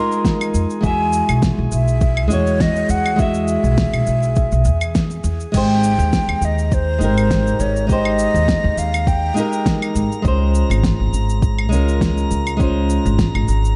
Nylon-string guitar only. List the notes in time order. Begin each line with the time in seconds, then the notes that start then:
Already playing: G#3 D#4 F4
0.00 A#4
0.81 G#3 E4 F#4
0.86 E5
2.28 G#3 E4 F#4
2.33 C#5
3.16 G#3 E4 F#4
3.22 E5
5.52 G#3 D#4 G4
5.57 C5
6.99 G#3 D#4 G4
7.04 A#4
7.87 G#3 D#4 G4
7.92 C5
9.34 G#3 D#4 G4
9.40 A#4
10.22 G#3 C#4 F4
10.28 C5
11.69 G#3 C#4 F4
11.74 A#4
12.57 G#3 C#4 F4
12.62 C5